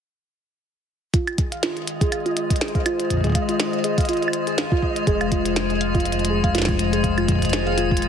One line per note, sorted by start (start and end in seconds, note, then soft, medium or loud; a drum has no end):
1.14 8.08 D#3 medium
1.14 1.26 F4 medium
1.14 8.08 D#5 medium
1.14 kick loud
1.14 closed hi-hat soft
1.23 8.08 G#3 medium
1.27 closed hi-hat soft
1.27 claves soft
1.36 8.08 F4 medium
1.36 1.50 G#4 medium
1.36 kick loud
1.36 closed hi-hat medium
1.52 1.62 F5 medium
1.52 closed hi-hat medium
1.63 1.75 F4 loud
1.63 snare loud
1.63 closed hi-hat medium
1.77 1.86 F4 medium
1.77 closed hi-hat soft
1.87 closed hi-hat medium
2.01 2.11 G#4 medium
2.01 kick loud
2.01 closed hi-hat medium
2.12 2.25 F5 medium
2.12 closed hi-hat medium
2.12 claves soft
2.19 8.08 C5 medium
2.26 2.35 F4 loud
2.26 closed hi-hat soft
2.37 2.49 F4 medium
2.37 closed hi-hat medium
2.50 kick loud
2.50 closed hi-hat soft
2.56 closed hi-hat soft
2.61 2.73 G#4 medium
2.61 snare loud
2.61 closed hi-hat medium
2.68 closed hi-hat soft
2.75 2.85 F5 medium
2.75 kick loud
2.75 closed hi-hat soft
2.86 2.98 F4 medium
2.86 closed hi-hat loud
2.86 claves medium
3.00 3.09 F4 medium
3.00 closed hi-hat medium
3.10 kick soft
3.10 closed hi-hat soft
3.14 kick medium
3.17 kick medium
3.21 kick medium
3.24 3.34 G#4 medium
3.24 kick medium
3.24 closed hi-hat soft
3.27 kick medium
3.30 kick medium
3.32 kick medium
3.35 3.48 F5 medium
3.35 kick loud
3.35 closed hi-hat medium
3.49 3.58 F4 loud
3.49 closed hi-hat medium
3.60 snare loud
3.60 closed hi-hat medium
3.73 closed hi-hat soft
3.84 3.96 G#4 medium
3.84 closed hi-hat medium
3.98 4.08 F5 medium
3.98 kick loud
3.98 closed hi-hat medium
4.01 closed hi-hat soft
4.05 closed hi-hat soft
4.09 4.21 F4 loud
4.09 closed hi-hat soft
4.13 closed hi-hat soft
4.17 closed hi-hat soft
4.23 4.32 F4 medium
4.23 closed hi-hat soft
4.28 claves medium
4.33 closed hi-hat medium
4.47 4.57 G#4 medium
4.47 closed hi-hat soft
4.58 4.71 F5 medium
4.58 snare loud
4.58 closed hi-hat medium
4.72 4.81 F4 loud
4.72 kick loud
4.82 4.95 F4 medium
4.82 kick medium
4.96 closed hi-hat medium
5.07 8.08 F1 medium
5.07 5.19 G#4 medium
5.07 kick loud
5.07 closed hi-hat soft
5.21 5.31 F5 medium
5.21 closed hi-hat soft
5.21 claves soft
5.32 5.44 F4 loud
5.32 kick loud
5.32 closed hi-hat medium
5.45 5.55 F4 medium
5.45 closed hi-hat medium
5.56 snare loud
5.56 closed hi-hat soft
5.70 5.79 G#4 medium
5.70 closed hi-hat soft
5.81 5.94 F5 medium
5.81 closed hi-hat medium
5.95 6.04 F4 loud
5.95 kick loud
5.95 closed hi-hat soft
6.00 closed hi-hat soft
6.05 6.18 F4 medium
6.05 closed hi-hat medium
6.12 closed hi-hat soft
6.19 closed hi-hat soft
6.25 closed hi-hat medium
6.30 6.42 G#4 medium
6.44 6.54 F5 medium
6.44 kick loud
6.44 closed hi-hat medium
6.55 6.67 F4 loud
6.55 snare medium
6.55 closed hi-hat medium
6.58 snare medium
6.62 snare medium
6.65 6.78 F4 medium
6.65 kick loud
6.65 snare loud
6.65 closed hi-hat soft
6.79 closed hi-hat loud
6.93 7.03 G#4 medium
6.93 closed hi-hat medium
7.04 7.17 F5 medium
7.04 kick loud
7.04 closed hi-hat soft
7.18 7.27 F4 medium
7.18 closed hi-hat soft
7.18 claves soft
7.28 7.40 F4 medium
7.28 kick loud
7.28 closed hi-hat medium
7.32 kick medium
7.35 kick medium
7.39 kick medium
7.42 kick medium
7.42 closed hi-hat medium
7.45 kick soft
7.45 closed hi-hat soft
7.48 kick soft
7.48 closed hi-hat soft
7.50 7.65 G#4 medium
7.50 kick soft
7.50 snare loud
7.50 closed hi-hat soft
7.67 7.77 F5 medium
7.67 closed hi-hat soft
7.78 7.90 F4 loud
7.78 closed hi-hat medium
7.91 8.01 F4 medium
7.91 kick loud
7.97 closed hi-hat medium
8.02 closed hi-hat soft